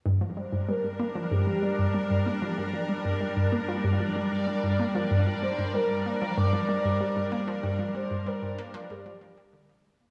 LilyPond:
<<
  \new Staff \with { instrumentName = "Synth texture" } { \time 4/4 \key g \minor \tempo 4 = 95 d''1~ | d''1~ | d''1~ | d''1 | }
  \new Staff \with { instrumentName = "Soft synth lead" } { \time 4/4 \key g \minor r8 c''8 bes'4 g'8 d''4 r8 | r1 | r8 c''8 bes'4 d''4. r8 | r8 c''8 bes'4 g'4. r8 | }
  \new Staff \with { instrumentName = "Ambient pad" } { \time 4/4 \key g \minor <g d' bes'>1~ | <g d' bes'>1~ | <g d' bes'>1~ | <g d' bes'>1 | }
  \new Staff \with { instrumentName = "Synth arpeggio sound" } { \clef bass \time 4/4 \key g \minor g,16 f16 g16 g,16 g16 g,16 bes16 f16 g,16 f16 g16 g,16 g16 g,16 bes16 f16 | g,16 f16 g16 g,16 g16 g,16 bes16 f16 g,16 f16 g16 g,16 g16 g,16 bes16 f16 | g,16 f16 g16 g,16 g16 g,16 bes16 f16 g,16 f16 g16 g,16 g16 g,16 bes16 f16 | g,16 f16 g16 g,16 g16 g,16 bes16 f16 g,16 f16 f16 g16 d16 f16 g16 bes16 | }
>>